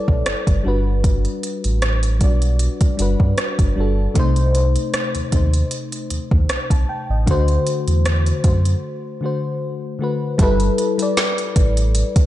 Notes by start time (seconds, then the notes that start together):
Already playing: G3 E4 A4 C#5 D5
0.08 B1, kick
0.26 G1, cross-stick, closed hi-hat
0.47 G1, kick, closed hi-hat
0.63 G1 G3 D4 F#4
0.68 B4
1.04 kick, closed hi-hat
1.25 closed hi-hat
1.43 closed hi-hat
1.64 A1, closed hi-hat
1.82 cross-stick, closed hi-hat
2.03 closed hi-hat
2.19 B1 G3 D4 F#4, kick, closed hi-hat
2.24 D5
2.42 closed hi-hat
2.59 closed hi-hat
2.81 kick, closed hi-hat
2.97 G1 G3 D4 F#4, closed hi-hat
3.02 B4
3.20 G2, kick
3.38 cross-stick, closed hi-hat
3.59 G1, kick, closed hi-hat
3.76 G1 G3 D4 F#4
3.80 A4
4.14 C2 C3 A3 D#4, kick, closed hi-hat
4.19 C5
4.36 closed hi-hat
4.55 closed hi-hat
4.76 closed hi-hat
4.94 cross-stick, closed hi-hat
5.15 D#2, closed hi-hat
5.31 D#2 C3 A3 D#4, kick, closed hi-hat
5.36 C5
5.54 closed hi-hat
5.71 closed hi-hat
5.92 closed hi-hat
6.10 D#2, closed hi-hat
6.31 D#2, kick
6.49 C2, cross-stick, closed hi-hat
6.70 C2 A5, kick, closed hi-hat
6.89 G5
7.09 A1 D#5
7.26 D2 D3 A3 F#4, kick, closed hi-hat
7.31 C5
7.48 closed hi-hat
7.67 closed hi-hat
7.87 E2, closed hi-hat
8.05 cross-stick, closed hi-hat
8.26 closed hi-hat
8.43 F#2 D3 A3 F#4, kick, closed hi-hat
8.48 C5
8.65 closed hi-hat
9.21 D3 A3 F#4
9.26 C5
9.99 D3 A3 F#4
10.04 B4
10.38 G1 G3 E4 A4, kick, closed hi-hat
10.43 B4
10.60 closed hi-hat
10.78 closed hi-hat
10.98 G3 E4 A4, closed hi-hat
11.02 D5
11.17 snare, closed hi-hat
11.38 closed hi-hat
11.56 A1, kick, closed hi-hat
11.77 closed hi-hat
11.95 closed hi-hat
12.16 kick, closed hi-hat